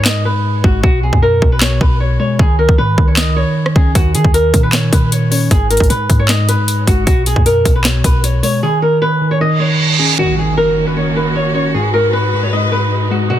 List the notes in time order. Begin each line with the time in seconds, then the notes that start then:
Already playing: G#2
0.05 G#2 D#5, snare, clap
0.25 B4
0.64 G#1 G#3 F#4, kick
0.83 B1 B2 F#4, kick
1.03 B2 G#4
1.13 F#2, kick
1.22 A#4
1.42 B1 B2, kick
1.52 B4
1.61 B2 C#5, snare, clap
1.81 B1 B4, kick
2.00 C#5
2.19 G#3 C#5
2.39 C#2 D#3 G#4, kick
2.59 D#3 A#4
2.69 C#2, kick
2.78 G#2 B4
2.98 C#2 D#3, kick
3.08 C#5
3.17 D#3 D#5, snare, clap
3.36 C#5
3.66 cross-stick
3.75 C#2 C#4 G#4, kick
3.95 D#2 D#3 F#4, kick, closed hi-hat
4.15 D#3 G#4, closed hi-hat
4.25 D#2, kick
4.34 A#4, closed hi-hat
4.54 A#2 D#3, kick, closed hi-hat
4.63 B4
4.73 D#3 C#5, snare, clap, closed hi-hat
4.93 A#2 B4, kick, closed hi-hat
5.12 C#5, closed hi-hat
5.31 C#4 C#5, open hi-hat
5.51 G#1 G#2 G#4, kick, closed hi-hat
5.70 G#2 A#4, closed hi-hat
5.77 G#1, kick, closed hi-hat
5.84 closed hi-hat
5.90 G#2 B4, closed hi-hat
6.10 G#2, kick, closed hi-hat
6.19 C#5
6.28 G#2 D#5, snare, clap, closed hi-hat
6.49 B4, closed hi-hat
6.68 closed hi-hat
6.87 G#1 G#3 F#4, kick, closed hi-hat
7.07 B1 B2 F#4, kick, closed hi-hat
7.26 B2 G#4, closed hi-hat
7.36 F#2, kick
7.46 A#4, closed hi-hat
7.65 B1 B2, kick, closed hi-hat
7.75 B4
7.84 B2 C#5, snare, clap, closed hi-hat
8.04 B1 B4, kick, closed hi-hat
8.24 C#5, closed hi-hat
8.43 G#3 C#5, open hi-hat
8.63 D#3 G#4
8.82 D#3 A#4
9.02 B4
9.21 D#3
9.31 C#5
9.41 D#3 D#5, reverse cymbal
9.60 C#5
9.99 C#4 G#4
10.19 D#3 A#3 C#4 F#4, impact
10.38 D#3 G#4
10.57 A#4
10.77 D#3
10.87 B4
10.97 D#3 C#5
11.16 B4
11.36 C#5
11.54 C#4 C#5
11.74 G#2 G#3 D#4 G#4 B4
11.94 G#2 A#4
12.13 B4
12.33 G#2
12.43 C#5
12.52 G#2 D#5
12.72 B4
13.11 G#3 F#4
13.30 B2 B3 F#4